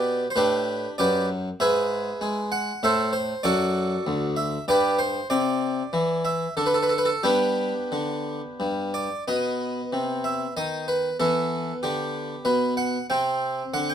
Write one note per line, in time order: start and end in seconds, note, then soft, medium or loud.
0.00 0.24 B2 medium
0.00 0.26 G4 medium
0.00 0.26 B4 medium
0.00 0.21 D5 medium
0.30 0.37 C5 medium
0.36 0.85 A2 medium
0.36 0.94 D4 medium
0.36 0.94 G4 medium
0.36 0.88 B4 medium
0.98 1.48 F#2 medium
0.98 1.27 G4 medium
0.98 1.27 B4 medium
0.98 1.24 D5 medium
1.60 2.09 G#2 medium
1.60 2.48 G#4 medium
1.60 2.48 B4 medium
1.60 2.38 E5 loud
2.21 2.70 G#3 medium
2.52 2.82 F#5 medium
2.83 3.32 A2 medium
2.83 3.12 A4 medium
2.83 3.12 C5 medium
2.83 3.09 E5 loud
3.13 3.44 C5 loud
3.43 3.94 F#2 medium
3.43 4.34 F#4 medium
3.43 4.34 A4 medium
3.43 4.23 D5 loud
4.07 4.56 D2 medium
4.37 4.63 E5 medium
4.68 5.18 G2 medium
4.68 4.98 G4 medium
4.68 4.98 B4 medium
4.68 4.95 D5 loud
4.99 5.26 C5 loud
5.30 5.81 C3 medium
5.30 6.26 D5 loud
5.93 6.45 E3 medium
6.25 6.53 E5 loud
6.57 7.11 D3 medium
6.57 6.66 A4 medium
6.66 6.75 B4 medium
6.74 6.83 A4 medium
6.83 6.91 B4 medium
6.89 6.99 A4 medium
6.98 7.07 B4 medium
7.05 7.24 A4 loud
7.23 7.72 G3 medium
7.23 8.90 B3 medium
7.23 8.90 D4 medium
7.23 8.68 G4 medium
7.92 8.39 D3 medium
8.60 9.07 G2 medium
8.94 9.22 D5 medium
9.28 9.79 B2 medium
9.28 11.17 B3 soft
9.28 10.10 D#5 medium
9.93 10.44 C3 soft
10.24 10.52 E5 medium
10.57 11.08 D#3 soft
10.57 10.84 D#5 medium
10.88 11.15 B4 medium
11.20 11.70 E3 medium
11.20 13.05 B3 soft
11.20 11.73 A4 medium
11.83 12.34 D3 soft
11.83 12.46 G4 medium
12.45 12.96 B2 soft
12.45 12.72 B4 medium
12.77 13.04 F#5 medium
13.10 13.61 C3 medium
13.10 13.95 C4 soft
13.10 13.64 G5 medium
13.74 13.95 D3 medium
13.74 13.89 F#5 medium
13.90 13.95 G5 medium